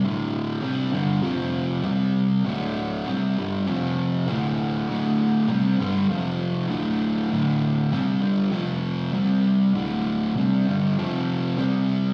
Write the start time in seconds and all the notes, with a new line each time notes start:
0.04 D2 A2 D3
0.63 C3 G3 C4
0.92 G2 D3 G3
1.22 F2 C3 F3
1.83 C3 G3 C4
2.45 D2 A2 D3
3.06 C3 G3 C4
3.38 G2 D3 G3
3.68 F2 C3 F3
4.28 D2 A2 D3
4.89 D2 A2 D3
5.49 C3 G3 C4
5.79 G2 D3 G3
6.09 F2 C3 F3
6.69 D2 A2 D3
7.31 D2 A2 D3
7.92 C3 G3 C4
8.22 G2 D3 G3
8.50 F2 C3 F3
9.13 C3 G3 C4
9.74 D2 A2 D3
10.35 C3 G3 C4
10.68 G2 D3 G3
10.98 F2 C3 F3
11.58 C3 G3 C4